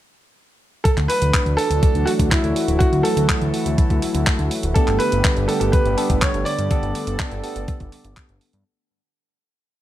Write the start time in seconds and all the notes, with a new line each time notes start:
0.84 E3 F#3 A3 D4 F#4 A4, kick, closed hi-hat
0.97 D2, clap, closed hi-hat
1.08 B4, open hi-hat
1.22 D2, closed hi-hat
1.34 kick, clap, closed hi-hat
1.46 D2, closed hi-hat
1.57 A4, open hi-hat
1.71 D2, closed hi-hat
1.83 kick, closed hi-hat
1.95 D2, closed hi-hat
2.06 F#4, open hi-hat
2.19 D2, kick, closed hi-hat
2.30 E4, kick, clap, closed hi-hat
2.44 D2, closed hi-hat
2.56 open hi-hat
2.68 D1, closed hi-hat
2.79 E4 F#4, kick, closed hi-hat
2.93 D2, closed hi-hat
3.03 A4, open hi-hat
3.17 D2, closed hi-hat
3.29 kick, clap, closed hi-hat
3.42 D2, closed hi-hat
3.54 open hi-hat
3.66 D2, closed hi-hat
3.78 kick, closed hi-hat
3.90 D2, kick, closed hi-hat
4.02 open hi-hat
4.15 D2, closed hi-hat
4.27 kick, clap, closed hi-hat
4.39 D2, closed hi-hat
4.51 open hi-hat
4.63 D1, closed hi-hat
4.74 D3 G3 B3 D4 G4 A4, kick, closed hi-hat
4.88 G1, clap, closed hi-hat
4.99 B4, open hi-hat
5.12 G1, closed hi-hat
5.24 kick, clap, closed hi-hat
5.37 G1, closed hi-hat
5.48 B3 D4 G4 A4 B4, open hi-hat
5.60 G1 A4, closed hi-hat
5.72 B4, kick, closed hi-hat
5.85 G1, closed hi-hat
5.97 B3 D4 G4 A4, open hi-hat
6.10 G1, kick, closed hi-hat
6.21 C#5, kick, clap, closed hi-hat
6.34 G1, closed hi-hat
6.45 D5, open hi-hat
6.59 G2, closed hi-hat
6.71 B3 D4 G4 A4, kick, closed hi-hat
6.83 G1, closed hi-hat
6.95 open hi-hat
7.07 G1, closed hi-hat
7.19 kick, clap, closed hi-hat
7.31 G1, closed hi-hat
7.44 B3 D4 G4 A4, open hi-hat
7.56 G1, closed hi-hat
7.68 kick, closed hi-hat
7.80 G1, kick, closed hi-hat
7.92 open hi-hat
8.05 G1, closed hi-hat
8.17 kick, clap, closed hi-hat
8.29 G1, closed hi-hat
8.41 open hi-hat
8.53 G2, closed hi-hat